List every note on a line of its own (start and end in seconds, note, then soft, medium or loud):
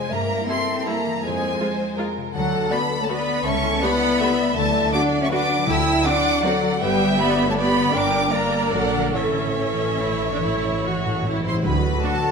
0.00 0.12 F2 medium
0.00 0.12 C3 soft
0.00 0.10 G#3 medium
0.00 0.12 G#3 soft
0.00 0.13 C4 soft
0.00 0.12 F4 medium
0.00 0.13 G#4 soft
0.00 0.11 C5 medium
0.00 0.13 C5 medium
0.00 0.13 F5 medium
0.00 0.11 G#5 medium
0.09 0.42 G2 medium
0.09 1.25 G2 medium
0.09 0.47 A#3 medium
0.09 0.48 A#3 medium
0.09 0.48 A#4 medium
0.09 0.47 E5 medium
0.09 0.49 A#5 medium
0.20 1.14 G3 soft
0.30 0.96 A#3 medium
0.39 0.86 E4 soft
0.46 0.56 G3 medium
0.46 0.86 C4 medium
0.46 0.87 C4 medium
0.46 0.56 E4 medium
0.46 0.77 G4 medium
0.46 1.24 A4 medium
0.46 0.86 E5 medium
0.46 0.78 C6 medium
0.59 1.25 A#4 medium
0.69 1.25 E5 medium
0.78 1.25 G4 medium
0.78 0.87 C6 medium
0.87 0.95 G3 medium
0.87 1.23 A#3 medium
0.87 0.95 E4 medium
0.87 1.25 E4 medium
0.87 1.22 E5 medium
0.87 1.24 A#5 medium
0.97 1.25 A#3 medium
1.06 1.25 E3 soft
1.15 1.25 G3 medium
1.22 1.54 F2 medium
1.22 2.36 F2 medium
1.22 1.97 G#3 medium
1.22 1.60 G#4 medium
1.22 1.97 C5 medium
1.22 1.98 G#5 medium
1.32 2.25 G#3 medium
1.41 2.07 C4 medium
1.51 1.97 F4 soft
1.60 1.68 G#3 medium
1.60 1.68 F4 medium
1.60 1.88 G#4 medium
1.60 1.98 C5 medium
1.70 2.36 C5 medium
1.80 2.36 F5 medium
1.89 2.36 G#4 medium
1.98 2.06 G#3 medium
1.98 2.06 F4 medium
1.98 2.36 F4 medium
1.98 2.35 A#4 medium
2.08 2.36 C4 medium
2.17 2.36 C3 medium
2.26 2.36 G#3 medium
2.34 2.65 D2 medium
2.34 3.46 D3 medium
2.34 2.68 F#3 medium
2.34 2.69 A4 medium
2.34 3.08 A4 medium
2.34 2.68 F#5 loud
2.43 2.60 D4 medium
2.52 2.99 A4 medium
2.61 3.09 D4 medium
2.69 2.78 A3 medium
2.69 2.99 B3 loud
2.69 2.79 B3 medium
2.69 2.78 F#4 medium
2.69 2.77 D5 medium
2.69 2.90 D5 medium
2.69 2.99 B5 loud
2.80 4.01 A5 medium
2.91 3.47 D5 medium
2.99 3.09 A3 medium
2.99 3.17 A4 medium
2.99 3.11 C#5 medium
2.99 3.10 A5 medium
3.08 3.17 A3 medium
3.08 3.44 B3 medium
3.08 3.36 D4 medium
3.08 3.17 F#4 medium
3.08 3.45 B4 medium
3.08 3.44 D5 medium
3.08 3.44 B5 loud
3.19 3.71 A4 medium
3.28 6.83 A3 medium
3.37 3.46 D4 medium
3.44 3.75 C#2 medium
3.44 4.57 C#3 medium
3.44 3.81 C#4 medium
3.44 3.81 A4 medium
3.44 3.82 E5 medium
3.44 3.81 C#6 loud
3.53 4.47 G3 medium
3.62 4.28 E4 medium
3.72 4.18 A4 medium
3.80 3.90 A3 medium
3.80 4.54 B3 loud
3.80 4.56 B3 loud
3.80 4.09 G4 medium
3.80 3.90 G4 medium
3.80 4.56 D5 medium
3.80 4.20 F#5 loud
3.80 4.56 B5 loud
3.91 4.58 E5 medium
4.02 5.11 A5 medium
4.11 4.58 G4 medium
4.20 4.28 A3 medium
4.20 4.28 G4 medium
4.20 4.81 A4 medium
4.20 4.93 E5 medium
4.30 4.58 E4 medium
4.39 4.58 C#4 medium
4.48 4.58 G3 medium
4.54 4.86 D2 medium
4.54 5.67 D3 medium
4.54 4.92 A3 loud
4.54 4.92 A3 medium
4.54 4.92 D5 medium
4.54 4.92 A5 loud
4.64 5.57 F#3 medium
4.74 4.91 F#4 medium
4.83 5.30 A4 medium
4.92 5.02 A3 medium
4.92 5.21 D4 medium
4.92 5.21 D4 loud
4.92 5.20 F#4 medium
4.92 5.01 F#4 medium
4.92 5.31 D5 medium
4.92 5.21 F#5 loud
4.92 5.00 D6 loud
5.03 6.23 F#5 medium
5.12 6.83 A5 medium
5.21 5.31 C#4 medium
5.21 5.25 C#4 medium
5.21 5.39 F#4 medium
5.21 5.32 E5 medium
5.21 5.27 C#6 medium
5.29 5.40 A3 medium
5.29 5.67 D4 loud
5.29 5.39 F#4 medium
5.29 6.83 A4 medium
5.29 5.67 B4 medium
5.29 5.68 F#5 medium
5.29 5.67 D6 loud
5.40 5.94 F#4 medium
5.50 5.76 D4 medium
5.58 6.61 F#3 medium
5.67 5.98 D2 medium
5.67 6.20 D3 medium
5.67 6.83 D3 medium
5.67 6.04 E4 loud
5.67 6.05 A4 medium
5.67 6.07 G5 loud
5.67 6.05 E6 loud
5.77 6.71 D4 medium
5.86 6.52 C5 medium
5.95 6.43 F#4 medium
6.04 6.13 C4 medium
6.04 6.44 D4 loud
6.04 6.13 F#4 medium
6.04 6.33 D5 medium
6.04 6.44 F#5 medium
6.04 6.46 F#5 loud
6.04 6.44 D6 loud
6.14 6.83 C6 medium
6.24 6.83 F#5 medium
6.34 7.28 D5 medium
6.44 6.81 F#3 loud
6.44 6.82 F#3 medium
6.44 6.52 C4 medium
6.44 6.83 F#4 medium
6.44 6.53 F#4 medium
6.44 6.83 A4 medium
6.44 6.82 D5 medium
6.44 6.81 F#5 loud
6.53 6.83 C5 medium
6.63 6.83 F#3 medium
6.72 6.98 D4 medium
6.80 7.91 G1 medium
6.80 7.93 G2 medium
6.80 7.18 G3 loud
6.80 7.18 G3 medium
6.80 7.16 B3 medium
6.80 7.16 G4 medium
6.80 7.18 B4 medium
6.80 7.56 E5 loud
6.80 7.19 G5 loud
6.91 7.84 G3 medium
7.00 7.66 D4 medium
7.10 7.56 B4 medium
7.17 7.47 B3 loud
7.17 7.48 B3 loud
7.17 7.56 B3 medium
7.17 7.47 G4 medium
7.17 7.56 G4 medium
7.17 7.47 D5 medium
7.17 7.47 B5 loud
7.29 8.20 D5 medium
7.39 7.96 B5 medium
7.47 7.57 A3 medium
7.47 7.58 A3 medium
7.47 9.15 G4 medium
7.47 7.59 C#5 medium
7.47 7.53 A5 medium
7.57 7.93 B3 medium
7.57 7.94 B3 medium
7.57 7.94 B3 loud
7.57 7.93 G4 medium
7.57 7.96 B4 medium
7.57 7.95 D5 medium
7.57 7.94 D5 medium
7.57 7.93 B5 loud
7.67 8.10 D4 medium
7.76 7.96 D3 medium
7.85 9.15 G3 medium
7.93 8.71 G1 medium
7.93 9.15 G2 medium
7.93 8.30 D4 medium
7.93 8.32 D4 medium
7.93 8.32 D4 loud
7.93 8.30 A#4 medium
7.93 8.33 A#4 medium
7.93 8.33 G5 loud
7.93 8.31 D6 loud
8.02 9.03 A#3 medium
8.11 8.82 D4 medium
8.22 8.40 D5 medium
8.31 8.72 A#3 medium
8.31 8.73 A#3 medium
8.31 9.12 D4 medium
8.31 9.12 A#4 medium
8.31 8.62 A#4 medium
8.31 9.13 D5 medium
8.31 8.75 D5 medium
8.31 8.73 A#5 loud
8.42 8.72 D5 medium
8.53 9.15 D6 medium
8.63 9.15 A#4 medium
8.73 9.14 A#1 medium
8.73 9.13 F#3 medium
8.73 9.14 F#3 medium
8.73 9.13 A4 medium
8.73 9.16 D5 medium
8.73 9.14 F#5 loud
8.84 9.15 D4 medium
8.94 9.15 D3 medium
9.04 9.15 A#3 medium
9.14 11.46 A1 medium
9.14 9.21 A2 soft
9.14 10.40 A2 medium
9.14 11.46 E3 medium
9.14 11.42 E3 medium
9.14 9.51 C#4 medium
9.14 11.42 A4 medium
9.14 9.52 A4 medium
9.14 11.42 C#5 medium
9.14 11.46 E5 medium
9.22 9.29 A2 soft
9.22 10.09 A3 medium
9.30 9.38 A2 soft
9.34 9.55 C#4 medium
9.45 9.55 A2 soft
9.45 9.88 A4 medium
9.56 9.99 C#4 medium
9.56 9.97 C#4 medium
9.64 9.71 A2 soft
9.64 10.92 C#5 medium
9.72 9.80 A2 soft
9.78 9.89 A2 soft
9.78 11.03 A5 medium
9.89 9.98 A2 soft
9.89 10.71 A4 medium
9.99 10.06 A2 soft
9.99 10.60 C#4 medium
9.99 10.30 E4 medium
10.07 10.14 A2 soft
10.07 10.30 A3 medium
10.15 10.22 A2 soft
10.21 10.29 A2 medium
10.21 10.50 E3 soft
10.30 10.38 A2 medium
10.30 11.35 A3 medium
10.30 10.41 D4 medium
10.39 10.45 A2 medium
10.39 11.67 A2 medium
10.39 10.81 E4 medium
10.46 10.53 A2 medium
10.51 10.62 A2 medium
10.51 11.45 E3 medium
10.62 10.70 A2 medium
10.62 10.82 C#4 medium
10.71 10.79 A2 medium
10.71 11.13 A4 medium
10.80 10.87 A2 medium
10.80 11.24 C#4 medium
10.80 11.25 F#4 medium
10.88 10.96 A2 medium
10.93 11.66 C#5 medium
10.98 11.05 A2 medium
11.04 11.14 A2 medium
11.04 12.22 A5 medium
11.14 11.21 A2 medium
11.14 11.91 A4 medium
11.22 11.29 A2 medium
11.22 11.66 C#4 medium
11.22 11.64 E4 medium
11.30 11.37 A2 medium
11.36 11.45 A2 loud
11.36 11.55 A3 medium
11.45 11.53 A2 loud
11.45 11.66 E3 soft
11.45 11.63 C5 medium
11.45 11.54 C6 medium
11.54 11.61 A2 loud
11.54 12.31 A3 medium
11.63 11.96 D2 medium
11.63 12.17 D3 loud
11.63 12.31 D3 medium
11.63 12.31 F#4 medium
11.63 12.02 B4 medium
11.63 12.31 F#5 medium
11.63 12.03 B5 medium
11.74 12.31 F#3 medium
11.83 12.31 D4 medium
11.92 12.31 A4 medium
12.01 12.15 D3 medium
12.01 12.15 D4 medium
12.01 12.10 D4 medium
12.01 12.10 F#4 medium
12.01 12.31 F#4 medium
12.01 12.17 F#4 medium
12.01 12.31 A4 loud
12.01 12.31 A5 loud
12.13 12.31 D5 medium
12.23 12.31 A5 medium